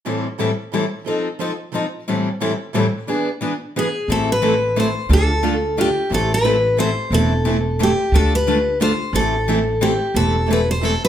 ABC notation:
X:1
M:3/4
L:1/16
Q:"Swing" 1/4=178
K:Am
V:1 name="Steel-string acoustic guitar"
z12 | z12 | z12 | z8 ^G4 |
A2 B6 c4 | A8 G4 | A2 B6 c4 | A8 G4 |
A2 B6 c4 | A8 G4 | A4 B2 c2 A2 B2 |]
V:2 name="Steel-string acoustic guitar"
[A,,E,G,CEA]2 z2 [A,,E,G,CEA] z3 [A,,E,G,CEA] z3 | [F,C_EA]2 z2 [F,CEA] z3 [F,CEA] z3 | [A,,E,G,CEA]2 z2 [A,,E,G,CEA] z3 [A,,E,G,CEA] z3 | [E,B,D^G]2 z2 [E,B,DG] z3 [E,B,DG] z3 |
[E,A,CEA]2 z2 [E,A,CEA] z3 [E,A,CEA] z3 | [D,A,DFA]2 z2 [D,A,DFA] z3 [D,A,DFA] z3 | [E,A,CEA]2 z2 [E,A,CEA] z3 [E,A,CEA] z3 | [E,A,CEA]2 z2 [E,A,CEA] z3 [E,A,CEA] z3 |
[D,A,DFA]2 z2 [D,A,DFA] z3 [D,A,DFA] z3 | [E,A,CEA]2 z2 [E,A,CEA] z3 [E,A,CEA] z3 | [E,A,CEA]2 z2 [E,A,CEA] z3 [E,A,CEA] z3 |]
V:3 name="Steel-string acoustic guitar"
[A,,E,G,CEA]2 z2 [A,,E,G,CEA] z3 [A,,E,G,CEA] z3 | [F,C_EA]2 z2 [F,CEA] z3 [F,CEA] z3 | [A,,E,G,CEA]2 z2 [A,,E,G,CEA] z3 [A,,E,G,CEA] z3 | [E,B,D^GB]2 z2 [E,B,DGB] z3 [E,B,DGB] z3 |
[E,A,CEA]2 z2 [E,A,CEA] z3 [E,A,CEA] z3 | [D,A,DFA]2 z2 [D,A,DFA] z3 [D,A,DFA] z3 | [E,A,CEA]2 z2 [E,A,CEA] z3 [E,A,CEA] z3 | [E,A,CEA]2 z2 [E,A,CEA] z3 [E,A,CEA] z3 |
[D,A,DFA]2 z2 [D,A,DFA] z3 [D,A,DFA] z3 | [E,A,CEA]2 z2 [E,A,CEA] z3 [E,A,CEA] z3 | [E,A,CEA]2 z2 [E,A,CEA] z3 [E,A,CEA] z3 |]
V:4 name="Upright bass" clef=bass
z12 | z12 | z12 | z12 |
A,,,12 | D,,12 | A,,,12 | E,,,12 |
D,,12 | A,,,12 | E,,,12 |]